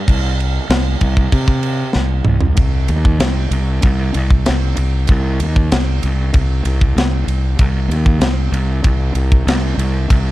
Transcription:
0.08 C2, kick, crash
0.40 crash
0.69 C2, snare, crash
1.01 C2, kick, crash
1.17 kick
1.32 C3, kick, crash
1.48 kick
1.63 crash
1.93 C2, snare
2.25 C2, mid tom
2.41 floor tom
2.57 C2, kick, ride
2.88 D#2, ride
3.05 kick
3.19 C2, snare, ride
3.51 C2, ride
3.82 C2, kick, ride
4.14 C2, ride
4.30 kick
4.46 C2, snare, ride
4.77 C2, ride
5.07 C2, kick, ride
5.40 D#2, ride
5.56 kick
5.72 C2, snare, ride
6.03 C2, ride
6.34 C2, kick, ride
6.65 C2, ride
6.81 kick
6.96 C2, snare, ride
7.27 C2, ride
7.59 C2, kick, ride
7.89 D#2, ride
8.06 kick
8.20 C2, snare, ride
8.52 C2, ride
8.84 C2, kick, ride
9.15 C2, ride
9.32 kick
9.47 C2, snare, ride
9.78 C2, ride
10.10 C2, kick, ride

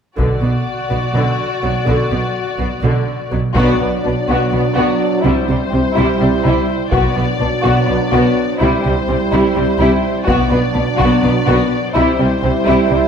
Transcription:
0.17 B1 B2 D3 F#4 D5, taiko
0.42 B1 B2 B3
0.89 B1 B2 B3
1.14 B1 B2 D3
1.62 B1 B2 F#3
1.86 B1 B2 D3
2.10 B1 B2 B3
2.58 B1 B2 B3
2.83 B1 B2 D3
3.31 B1 B2 F#3
3.55 B1 B2 F#3 B3 D4 F#4 D5, taiko
3.80 B1 B2 B3
4.04 B1 B2 B3 D4
4.28 B1 B2 B3 F#4
4.52 B1 B2 B3
4.76 B1 B2 B3 F#4
5.23 C2 C3 G3 E4 C5
5.47 C2 C3 G3
5.71 C2 C3 G3 C4
5.95 C2 C3 G3 E4
6.20 C2 C3 G3
6.44 C2 C3 G3 E4
6.92 B1 B2 F#3 B3 D4 F#4 D5, taiko
7.16 B1 B2 B3
7.39 B1 B2 B3 D4
7.63 B1 B2 B3 F#4
7.87 B1 B2 B3
8.11 B1 B2 B3 F#4
8.60 C2 C3 G3 E4 C5
8.83 C2 C3 G3
9.08 C2 C3 G3 C4
9.32 C2 C3 G3 E4
9.55 C2 C3 G3
9.79 C2 C3 G3 E4
10.27 B1 B2 F#3 B3 D4 F#4 D5, taiko
10.50 B1 B2 B3
10.74 B1 B2 B3 D4
10.97 B1 B2 F#4, taiko
11.02 B3
11.22 B1 B2 B3
11.47 B1 B2 B3 F#4
11.95 C2 C3 G3 E4 C5
12.19 C2 C3 G3
12.42 C2 C3 G3 C4
12.66 C2 C3 G3 E4
12.90 C2 C3 G3

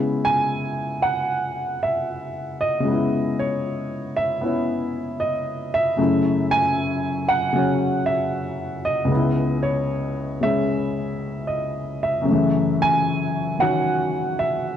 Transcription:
Already playing: C#3 G#3 B3 E4 E5
0.25 G#5
1.02 F#5
1.83 E5
2.61 D#5
2.80 C#3
2.84 G#3 B3
2.92 E4
3.39 C#5
4.16 E5
4.41 B3 C#4 E4
5.20 D#5
5.74 E5
5.97 F#2 C#3 A3
6.02 E4
6.51 G#5
7.29 F#5
7.53 C#3 F#3 C#4
8.06 E5
8.85 D#5
9.05 C#2 C#3
9.12 B3 E4
9.63 C#5
10.41 C#3 G#3 C#4 E5
11.47 D#5
12.03 E5
12.21 F#2 C#3
12.28 E3 A3
12.82 G#5
13.59 D#3 C#4 F#4 F#5
14.39 E5

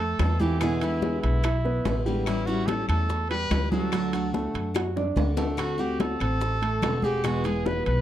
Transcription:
Already playing: F2 A4
0.00 A3 A4
0.19 E2 E3 A3 C4 F4, high bongo, low bongo, high conga, high timbale, low timbale, claves
0.39 E3 A3 C4 E4 F4 G4, high bongo, high conga
0.60 B2 D3 E3 G#3 B3 E4 G#4, high bongo, high conga, high timbale, claves
0.81 D3 G#3 B3 E4, high bongo, high conga, high timbale
1.02 G#3 G#4, high bongo, high conga, low timbale
1.22 B1 E4, high bongo, high conga, high timbale
1.43 E4 E5, muted steel-string acoustic guitar stroke, high bongo, high conga, high timbale, claves
1.65 B3 B4, high bongo, high conga
1.85 A1 D3 G#3 B3 E4, high bongo, low bongo, high conga, high timbale, low timbale
2.05 D3 G3 G#3 B3 E4 G4
2.24 E3 G3 C#4 E4, high bongo, high conga, high timbale, claves
2.29 E4
2.46 G3 C#4 E4 F#4 E5, high bongo, high conga
2.67 A4, high bongo, high conga, high timbale, low timbale
2.88 E2 A3 A4, high bongo, high timbale, claves
3.09 muted steel-string acoustic guitar stroke, high bongo, high conga
3.30 G3 G4 B4, high conga, high timbale
3.51 D2 E3 G3 C#4 E4, high bongo, low bongo, high conga, high timbale, low timbale, claves
3.71 F#3 G3 C#4 E4 F#4 A4, high bongo, high conga
3.92 D3 F#3 A3 D4 F#4, high bongo, high conga, high timbale, claves
4.13 A3 D4 F#4, high bongo, high conga, high timbale
4.34 A3 A4, high bongo, high conga, low timbale
4.54 F#2, high bongo, high conga, high timbale
4.74 F#4 F#5, muted steel-string acoustic guitar stroke, high bongo, high conga, high timbale, claves
4.96 D4 D5, low bongo, high conga
5.16 D2 D3 A3 D4 F#4, low bongo, high conga, high timbale
5.37 A3 D4 F#4 A4, low bongo, low timbale
5.57 D3 A3 C4 F#4, high bongo, high conga, high timbale, claves
5.78 A3 C4 F#4 G4 F#5, high bongo, high conga
6.00 A4, high bongo, high conga, high timbale, low timbale
6.20 A1 C4 A4 C5, high bongo, high timbale, claves
6.41 muted steel-string acoustic guitar stroke, high bongo, high conga
6.62 A3 A4, high conga, high timbale
6.82 E1 D3 A3 C4 F#4, high bongo, low bongo, high conga, high timbale, low timbale, claves
7.02 G#3 A3 C4 F#4 G4 G#4, high bongo, high conga
7.24 B2 E3 G#3 B3 E4 F#4 G#4, high bongo, high conga, high timbale, claves
7.44 E3 G#3 B3 E4 G#4, high bongo, high conga, high timbale
7.66 B3 B4, high bongo, high conga, low timbale
7.86 B1 B4, high bongo, high conga, high timbale

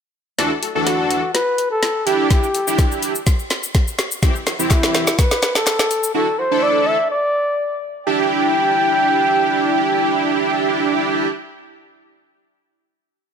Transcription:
0.38 E3 D4 F#4 A4, snare, closed hi-hat
0.62 F#4 A4, closed hi-hat
0.75 E3 D4 F#4 A4
0.87 F#4, snare, closed hi-hat
1.11 closed hi-hat
1.34 B4, snare, closed hi-hat
1.58 closed hi-hat
1.71 A4
1.83 snare, closed hi-hat
2.06 D4 E4 G4, closed hi-hat
2.31 G4, kick, snare, closed hi-hat, shaker
2.43 shaker
2.54 E4 A4, closed hi-hat, shaker
2.67 D4 E4 G4, shaker
2.79 kick, snare, closed hi-hat, shaker
2.92 shaker
3.03 closed hi-hat, shaker
3.15 shaker
3.27 kick, snare, closed hi-hat, shaker
3.39 shaker
3.50 snare, closed hi-hat, shaker
3.63 shaker
3.75 kick, snare, closed hi-hat, shaker
3.88 shaker
3.99 snare, closed hi-hat, shaker
4.11 shaker
4.22 E3 C4 E4 G4, kick, snare, closed hi-hat, shaker
4.35 shaker
4.46 E4 F#4, snare, closed hi-hat, shaker
4.59 E3 C4 E4 G4, shaker
4.71 E4, kick, snare, clap, closed hi-hat, shaker
4.83 snare, shaker
4.95 snare, closed hi-hat, shaker
5.07 snare, shaker
5.19 B4, kick, snare, closed hi-hat, shaker
5.31 snare, shaker
5.42 snare, closed hi-hat, shaker
5.55 A4, snare, shaker
5.67 snare, clap, closed hi-hat, shaker
5.79 snare, shaker
5.91 closed hi-hat, shaker
6.03 shaker
6.14 D4 E4 F#4 A4
6.38 E4 F#4 C5
6.51 D4 E4 A4
6.63 D5
6.87 E5
7.11 D5
8.07 D4 E4 G4 G5

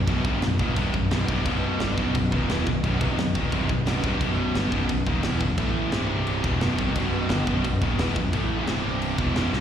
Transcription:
Already playing: B3 F#4 B4 D#5
0.07 B0 B1 F#2 B2, kick, crash
0.25 C1 C2 G2 C3, kick
0.42 B0 B1 F#2, snare, crash
0.59 D#1 D#2 A#2 D#3, kick
0.76 C1 C2 G2 C3, kick, crash
0.94 B0 B1 F#2, kick
1.11 B0 B1 F#2 B2, snare, crash
1.28 C1 C2 G2 C3, kick
1.46 B0 B1 F#2 B2, kick, crash
1.80 G1 G2 D3 G3, snare, crash
1.98 B0 B1 F#2 B2, kick
2.15 B0 B1 F#2, kick, crash
2.32 D#1 D#2 A#2 D#3, kick
2.50 E1 E2 B2 E3, snare, crash
2.67 B0 B1 F#2, kick
2.84 B0 B1 F#2 B2, kick, crash
3.01 C1 C2 G2 C3, kick
3.18 B0 B1 F#2, snare, crash
3.35 D#1 D#2 A#2 D#3, kick
3.52 C1 C2 G2 C3, kick, crash
3.69 B0 B1 F#2, kick
3.86 B0 B1 F#2 B2, snare, crash
4.04 C1 C2 G2 C3, kick
4.21 B0 B1 F#2 B2, kick, crash
4.55 G1 G2 D3 G3, snare, crash
4.71 B0 B1 F#2 B2, kick
4.89 B0 B1 F#2, kick, crash
5.07 D#1 D#2 A#2 D#3, kick
5.23 E1 E2 B2 E3, snare, crash
5.41 B0 B1 F#2, kick
5.57 A1 A2 E3 A3 E4 A4, kick, crash
5.92 C1 C2 G2 C3 G3 C4 C5, snare, crash
6.27 crash
6.44 E1 E2 B2 E3 B3 F#4 B4 D#5, kick
6.61 B0 B1 F#2 B2, snare, crash
6.78 C1 C2 G2 C3, kick
6.96 B0 B1 F#2 B2, kick, crash
7.30 G1 G2 D3 G3, snare, crash
7.47 B0 B1 F#2 B2, kick
7.64 B0 B1 F#2, kick, crash
7.81 D#1 D#2 A#2 D#3, kick
7.99 E1 E2 B2 E3, snare, crash
8.16 B0 B1 F#2, kick
8.33 A1 A2 E3 A3 E4 A4, kick, crash
8.66 C1 C2 G2 C3 G3 C4 C5, snare, crash
9.02 crash
9.18 E1 E2 B2 E3 B3 F#4 B4 D#5, kick
9.36 B0 B1 F#2 B2, snare, crash
9.53 C1 C2 G2 C3, snare

